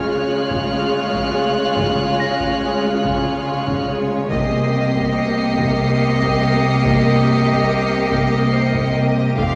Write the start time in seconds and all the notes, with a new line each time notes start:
Already playing: C#2 C#3 G#3 F4 G#4 C#5 G#5 F6
0.07 C#4 F#6
0.49 C#3 G#6, taiko
0.93 C#4
1.13 taiko
1.35 C#3
1.77 C#3, taiko
2.20 C#4 A#6
2.40 taiko
2.61 C#4
3.03 C#3, taiko
3.46 C#4
3.67 taiko
3.88 C#3
4.29 C2 C3 A#3 G4 A#4 D#5 G5 C7, taiko
4.73 C4
4.94 taiko
5.14 C4 C#7
5.58 C3, taiko
6.00 C4
6.21 taiko
6.43 C3
6.85 C3, taiko
7.27 C4
7.48 taiko
7.70 C4
8.12 C3, taiko
8.53 C4 C5 C7
8.75 taiko
8.96 C3
9.37 F1 F2 A3 G4 A4 C5 F5 G5 C6 D6, taiko